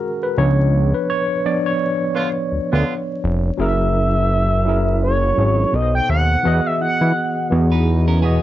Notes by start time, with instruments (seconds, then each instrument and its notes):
Already playing: tine electric piano F#4 G#4 A#4
0.23 tine electric piano B4
0.37 analog synth bass C#2, tine electric piano F3 B3 D4 C#5
0.94 tine electric piano B4
1.10 tine electric piano C#5
1.45 tine electric piano F3 B3 D4 D5
1.66 tine electric piano C#5
2.15 horn section D3 B3 F4
2.52 analog synth bass D2
2.71 analog synth bass D2, horn section D3 B3 F4
3.24 analog synth bass F1
3.57 analog synth bass F#1, tine electric piano F#3 C#4 E4 G#4, analog synth lead E5
3.62 tine electric piano A#4
4.65 tine electric piano F#3 C#4 E4 G#4
4.69 tine electric piano A#4
5.03 analog synth lead C#5
5.36 analog synth bass G#1, tine electric piano F#3 C#4 E4 G#4
5.41 tine electric piano C#5
5.71 analog synth bass B1, tine electric piano B2 B3 D#4 A4, analog synth lead D#5
5.76 tine electric piano B4
5.82 tine electric piano C5
5.95 analog synth lead G5
6.09 analog synth bass D#2, analog synth lead F#5
6.43 analog synth bass E2, tine electric piano E3 B3 F#4 G#4
6.47 tine electric piano D#5
6.66 analog synth lead E5
6.81 analog synth bass E3, analog synth lead F#5
7.01 analog synth bass E3
7.50 analog synth bass E2, tine electric piano E3 B3 F#4 G#4
7.54 tine electric piano F#5
7.72 clean electric guitar D#4 B4
8.08 clean electric guitar C#4 A#4
8.21 tine electric piano B2 E3 F#4 G#4, clean electric guitar B3 G#4
8.26 tine electric piano D#5